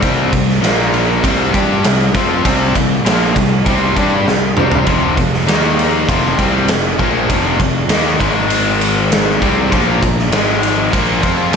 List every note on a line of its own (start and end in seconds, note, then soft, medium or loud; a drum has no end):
0.02 0.31 C2 medium
0.02 0.31 C3 loud
0.02 0.31 G3 loud
0.02 0.33 C4 loud
0.02 kick medium
0.02 ride medium
0.33 0.61 C2 medium
0.33 0.57 C3 medium
0.33 0.57 G3 medium
0.33 kick medium
0.33 ride medium
0.49 snare soft
0.61 1.20 A#1 medium
0.61 1.22 A#2 medium
0.61 1.22 F3 medium
0.61 1.23 A#3 loud
0.61 snare loud
0.61 ride medium
0.94 ride medium
1.23 1.52 C2 loud
1.23 1.53 C3 medium
1.23 1.52 G3 medium
1.23 1.53 C4 medium
1.23 kick loud
1.23 ride medium
1.54 1.82 G2 loud
1.54 1.83 G3 medium
1.54 1.84 D4 medium
1.54 1.84 G4 loud
1.54 kick loud
1.54 ride medium
1.84 2.13 C2 medium
1.84 2.08 C3 medium
1.84 2.09 G3 medium
1.84 snare loud
1.84 ride loud
2.14 2.43 F2 loud
2.14 2.44 F3 medium
2.14 2.44 C4 loud
2.14 2.44 F4 loud
2.14 kick loud
2.14 snare soft
2.14 ride medium
2.44 2.73 C2 loud
2.44 2.74 C3 medium
2.44 2.74 G3 loud
2.44 2.75 C4 loud
2.44 kick loud
2.44 ride medium
2.75 3.03 C2 medium
2.75 2.99 C3 medium
2.75 2.99 G3 medium
2.75 kick medium
2.75 ride medium
3.05 3.33 A#1 medium
3.05 3.35 A#2 medium
3.05 3.35 F3 medium
3.05 3.35 A#3 medium
3.05 snare loud
3.05 ride loud
3.36 3.64 C2 medium
3.36 3.60 C3 medium
3.36 3.60 G3 medium
3.36 kick medium
3.36 ride medium
3.65 3.94 C2 loud
3.65 3.95 C3 medium
3.65 3.94 G3 medium
3.65 3.96 C4 medium
3.65 kick loud
3.65 ride medium
3.96 4.25 G2 medium
3.96 4.25 G3 medium
3.96 4.26 D4 loud
3.96 4.26 G4 loud
3.96 kick loud
3.96 ride medium
4.25 4.54 C2 medium
4.25 4.51 C3 medium
4.25 4.52 G3 medium
4.25 snare medium
4.57 4.85 C2 loud
4.57 4.86 C3 medium
4.57 4.87 G3 medium
4.57 4.87 C4 loud
4.57 mid tom medium
4.72 floor tom medium
4.87 5.15 F1 medium
4.87 5.16 F2 medium
4.87 5.16 C3 loud
4.87 5.17 F3 medium
4.87 kick medium
4.87 ride medium
5.17 5.46 F1 medium
5.17 5.41 F2 medium
5.17 5.42 C3 medium
5.17 kick medium
5.17 ride medium
5.34 snare soft
5.47 6.04 D#2 medium
5.47 6.07 D#3 medium
5.47 6.07 A#3 medium
5.47 6.07 D#4 medium
5.47 snare loud
5.47 ride medium
5.79 ride medium
6.08 6.37 F1 medium
6.08 6.38 F2 medium
6.08 6.37 C3 medium
6.08 6.38 F3 medium
6.08 kick loud
6.08 ride medium
6.38 6.67 C2 loud
6.38 6.68 C3 loud
6.38 6.68 G3 medium
6.38 6.68 C4 loud
6.38 kick medium
6.38 ride medium
6.68 6.98 F1 medium
6.68 6.93 F2 medium
6.68 6.93 C3 medium
6.68 snare loud
6.68 ride loud
6.98 7.28 A#1 loud
6.98 7.28 A#2 medium
6.98 7.29 F3 loud
6.98 7.29 A#3 loud
6.98 kick loud
6.98 ride medium
7.29 7.58 F1 medium
7.29 7.59 F2 medium
7.29 7.59 C3 medium
7.29 7.59 F3 loud
7.29 kick medium
7.29 ride medium
7.60 7.88 F1 medium
7.60 7.84 F2 medium
7.60 7.84 C3 medium
7.60 kick medium
7.60 ride medium
7.89 8.18 D#2 medium
7.89 8.19 D#3 medium
7.89 8.20 A#3 medium
7.89 8.20 D#4 medium
7.89 snare loud
7.89 ride loud
8.20 9.38 G#1 medium
8.20 9.40 G#2 medium
8.20 9.40 D#3 medium
8.20 9.40 G#3 medium
8.20 kick loud
8.20 ride medium
8.50 ride medium
8.81 ride medium
9.12 snare loud
9.12 ride medium
9.40 9.70 C2 loud
9.40 9.70 C3 medium
9.40 9.70 G3 medium
9.40 9.71 C4 medium
9.40 kick medium
9.40 ride medium
9.71 10.00 A#1 loud
9.71 10.00 A#2 loud
9.71 10.00 F3 medium
9.71 10.02 A#3 loud
9.71 kick medium
9.71 ride medium
10.01 10.30 A#1 medium
10.01 10.26 A#2 medium
10.01 10.26 F3 medium
10.01 kick medium
10.01 ride medium
10.19 snare soft
10.31 10.88 G#1 medium
10.31 10.92 G#2 medium
10.31 10.91 D#3 medium
10.31 10.91 G#3 loud
10.31 snare loud
10.31 ride medium
10.63 ride medium
10.91 11.21 A#1 medium
10.91 11.22 A#2 medium
10.91 11.21 F3 medium
10.91 11.22 A#3 medium
10.91 kick loud
10.91 ride medium
11.22 11.52 F2 loud
11.22 11.52 F3 medium
11.22 11.52 C4 medium
11.22 11.53 F4 loud
11.22 kick medium
11.22 ride medium
11.53 11.56 A#2 medium
11.53 ride loud